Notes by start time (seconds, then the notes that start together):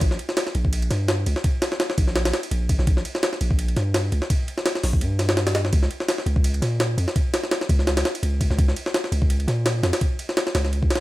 0.01 A#1, kick, ride
0.11 snare
0.19 ride
0.29 snare
0.37 snare, ride
0.47 snare
0.55 A#1, ride
0.65 kick
0.73 ride
0.82 ride
0.91 G2, snare, ride
1.08 snare, ride
1.26 C#2, ride
1.36 snare
1.44 kick, ride
1.62 snare, ride
1.72 snare
1.80 snare, ride
1.90 snare
1.98 A#1, kick, ride
2.08 snare
2.16 snare, ride
2.25 snare, ride
2.33 snare, ride
2.43 ride
2.51 A#1, ride
2.69 kick, ride
2.79 A#1, snare
2.87 A#1, kick, ride
2.97 snare
3.05 ride
3.15 snare
3.23 snare, ride
3.33 snare
3.41 A#1, ride
3.51 kick
3.59 ride
3.68 ride
3.76 G2, snare, ride
3.94 snare, ride
4.12 C#2, ride
4.22 snare
4.30 kick, ride
4.48 ride
4.58 snare
4.66 snare, ride
4.75 snare
4.83 A#1, snare, open hi-hat
4.93 kick
5.01 G2, ride
5.19 snare, ride
5.29 snare
5.37 snare, ride
5.47 snare, ride
5.55 snare, ride
5.65 snare
5.73 C#2, kick, ride
5.83 snare
5.91 ride
6.00 snare
6.08 snare, ride
6.18 snare
6.26 C#2, ride
6.36 kick
6.44 ride
6.54 ride
6.62 A#2, snare, ride
6.80 snare, ride
6.98 F2, ride
7.08 snare
7.16 kick, ride
7.34 snare, ride
7.43 snare
7.51 snare, ride
7.61 snare
7.69 C#2, kick, ride
7.79 snare
7.87 snare, ride
7.97 snare, ride
8.05 snare, ride
8.15 ride
8.23 C#2, ride
8.41 kick, ride
8.50 C#2, snare
8.59 C#2, kick, ride
8.68 snare
8.76 ride
8.86 snare
8.94 snare, ride
9.04 snare
9.12 C#2, ride
9.22 kick
9.30 ride
9.40 ride
9.48 A#2, snare, ride
9.66 snare, ride
9.83 F2, snare, ride
9.93 snare, ride
10.01 kick, ride
10.19 ride
10.29 snare
10.37 snare, ride
10.47 snare
10.55 C#2, snare, ride
10.65 snare
10.73 ride
10.83 kick
10.90 snare, ride
10.95 snare, ride